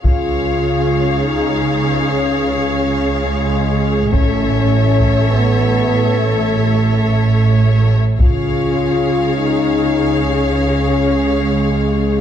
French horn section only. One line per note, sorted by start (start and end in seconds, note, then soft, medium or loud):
0.04 1.17 F4 medium
1.20 2.06 D#4 medium
2.09 3.25 C#4 medium
3.25 4.10 G#3 medium
4.12 5.28 C#4 medium
5.30 6.17 B3 medium
6.18 7.31 A3 medium
8.20 9.32 F4 medium
9.37 10.24 D#4 medium
10.24 11.38 C#4 medium
11.40 12.21 G#3 medium